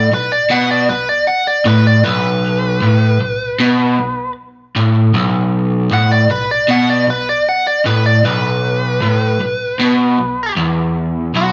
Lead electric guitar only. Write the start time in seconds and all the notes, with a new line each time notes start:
Already playing: D5
0.14 B4
0.32 D5
0.51 F#5
0.71 D5
0.89 B4
1.09 D5
1.27 F#5
1.47 D5
1.67 B4
1.87 D5
2.04 B4
5.94 F#5
6.12 D5
6.31 B4
6.51 D5
6.71 F#5
6.90 D5
7.10 B4
7.29 D5
7.49 F#5
7.67 D5
7.86 B4
8.06 D5
8.25 B4
11.37 F#4